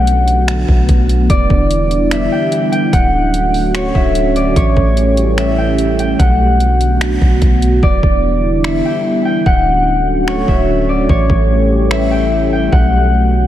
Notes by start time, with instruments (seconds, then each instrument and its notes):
Already playing: 808-style bass B1, analog synth pad D3 F#3 A3 B3 F#4, harp E5 F#5
0.07 closed hi-hat
0.28 closed hi-hat
0.48 finger snap, closed hi-hat
0.69 808-style bass B1, kick
0.89 808-style bass B1, kick, closed hi-hat
1.09 closed hi-hat
1.30 808-style bass E1, analog synth pad E3 G3 E4, harp D5, kick, closed hi-hat
1.50 808-style bass E1, kick
1.71 closed hi-hat
1.91 closed hi-hat
2.11 harp E5, finger snap, closed hi-hat
2.32 harp G5
2.52 closed hi-hat
2.72 harp G5, closed hi-hat
2.93 808-style bass D1, analog synth pad F#3 A3 C#4 F#4, harp F#5, kick, closed hi-hat
3.34 closed hi-hat
3.54 open hi-hat
3.75 harp C#5, finger snap, closed hi-hat
3.95 808-style bass D1, harp E5, kick
4.15 closed hi-hat
4.36 harp D5, closed hi-hat
4.56 808-style bass A1, analog synth pad E3 G3 A3 G4, harp C#5, kick, closed hi-hat
4.77 808-style bass A1, kick
4.97 closed hi-hat
5.17 closed hi-hat
5.38 harp E5, finger snap, closed hi-hat
5.58 harp G5
5.78 closed hi-hat
5.99 harp G5, closed hi-hat
6.19 808-style bass B1, analog synth pad D3 F#3 B3 F#4, harp F#5, kick, closed hi-hat
6.60 closed hi-hat
6.81 closed hi-hat
7.01 finger snap, closed hi-hat
7.22 808-style bass B1, kick
7.42 808-style bass B1, kick, closed hi-hat
7.62 closed hi-hat
7.83 808-style bass E1, analog synth pad D3 E3 G3 E4, harp D5, kick
8.03 808-style bass E1, kick
8.64 harp E5, finger snap
8.85 harp G5
9.25 harp G5
9.46 808-style bass D1, analog synth pad D3 F#3 A3 C#4 F#4, harp F#5, kick
10.28 harp C#5, finger snap
10.48 808-style bass D1, harp E5, kick
10.89 harp D5
11.09 808-style bass A1, analog synth pad E3 G3 G4, harp C#5, kick
11.30 808-style bass A1, kick
11.91 harp E5, finger snap
12.11 harp G5
12.53 harp G5
12.72 808-style bass B1, analog synth pad D3 F#3 B3 F#4, harp F#5, kick